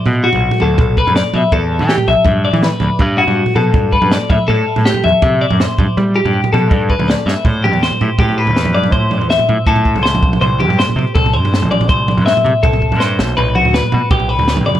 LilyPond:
<<
  \new Staff \with { instrumentName = "Clean electric guitar" } { \time 4/4 \key a \dorian \tempo 4 = 162 r8 fis'4 a'4 b'8 d''8 e''8 | a'4 g'8 e''4 d''8 b'4 | r8 fis'4 a'4 b'8 d''8 e''8 | a'4 g'8 e''4 d''8 c''4 |
r8 g'4 a'4 b'8 d''8 e''8 | c''8 g'8 c''4 g'8 b'4 d''8 | c''4 e''4 a'4 c''4 | c''8 g'8 c''4 a'8 c''4 d''8 |
c''4 e''4 a'4 c''4 | b'8 fis'8 b'4 g'8 b'4 d''8 | }
  \new Staff \with { instrumentName = "Picked electric bass" } { \clef bass \time 4/4 \key a \dorian b,8. b,,8 r16 d,8 b,,8. fis,8 r16 b,16 r16 | e,8. e8 r16 b,,16 r16 g,8. e8 r16 d,16 r16 | g,8. g,8 r16 b,8 g,8. g,8 r16 a,16 r16 | a,8 r16 a,8 r16 e,16 r16 c8. fis,8 r16 g,16 r16 |
g8. g,8 r16 b,8 g,8. d,8 r16 g,16 r16 | a,8. e,8 r16 a,16 r16 a,8. e,8. g,8 | a,8. e,8 r16 a,16 r16 a,8. cis,8. c,8 | c,8. g,8 r16 c16 r16 c,8. g,8. a,,8 |
c,8. g,8 r16 c16 r16 c,8. g,8. b,,8 | b,,8. d,8 r16 b,16 r16 b,,8. d,8. fis,,8 | }
  \new DrumStaff \with { instrumentName = "Drums" } \drummode { \time 4/4 tomfh8. tomfh16 r16 tomfh16 toml8 <bd tomfh>8 bd16 <tomfh toml>16 sn8 <tomfh toml>8 | <bd tomfh>8. tomfh16 sn16 tomfh16 toml8 <bd tomfh toml>8. <tomfh toml>16 sn8 <tomfh toml>8 | <bd tomfh>8. tomfh16 r16 tomfh16 toml8 <bd tomfh>8 bd16 <tomfh toml>16 sn8 <bd tomfh toml>8 | tomfh8. tomfh16 sn16 tomfh16 toml8 <bd tomfh toml>8. <tomfh toml>16 sn8 <bd tomfh toml>8 |
tomfh8. tomfh16 r16 tomfh16 toml8 <bd tomfh>8 bd16 <tomfh toml>16 sn8 sn8 | <bd tomfh>8 toml16 tomfh16 sn16 tomfh16 tomfh8 <bd tomfh>16 tomfh8 tomfh16 sn16 <tomfh toml>16 toml16 <tomfh toml>16 | <bd tomfh>8 <tomfh toml>16 tomfh16 sn16 tomfh16 tomfh8 <bd tomfh>16 tomfh16 bd16 tomfh16 sn16 <tomfh toml>16 <bd toml>16 <tomfh toml>16 | tomfh8 toml16 tomfh16 sn16 tomfh16 tomfh8 <bd tomfh>16 tomfh8 tomfh16 sn16 <tomfh toml>16 toml16 <tomfh toml>16 |
<bd tomfh>8 <tomfh toml>16 tomfh16 sn16 tomfh16 tomfh8 <bd tomfh>16 tomfh16 bd16 tomfh16 sn8 sn8 | tomfh8 toml16 tomfh16 sn16 tomfh16 tomfh8 <bd tomfh>16 tomfh8 tomfh16 sn16 <tomfh toml>16 toml16 <tomfh toml>16 | }
>>